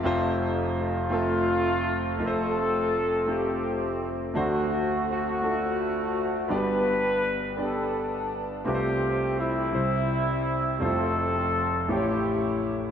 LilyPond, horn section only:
\new Staff \with { instrumentName = "Horn section" } { \time 6/8 \key f \major \tempo 4. = 56 << { r4 f'2 | a'4. g'4 r8 | fis'4 fis'2 | b'4. a'4 r8 |
g'4 e'2 | a'4. g'4 r8 | } \\ { r4 <a c'>2 | <c' f'>4. c'4. | <a c'>4 <a c'>2 | <d' g'>4. d'4. |
c'4 <g c'>2 | <c' f'>4. <cis' e'>4. | } >> }